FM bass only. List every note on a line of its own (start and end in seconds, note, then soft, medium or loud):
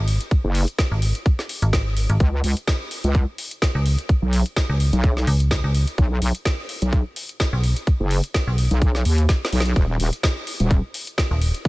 0.00 0.19 G#1 loud
0.91 1.13 G#1 medium
1.62 2.07 G#1 loud
2.10 2.19 G#1 loud
3.75 3.96 C#2 loud
4.69 4.91 C#2 loud
5.27 5.62 C#2 loud
5.64 5.85 C#2 loud
7.53 7.74 B1 loud
8.47 8.69 B1 medium
11.31 11.52 D#1 loud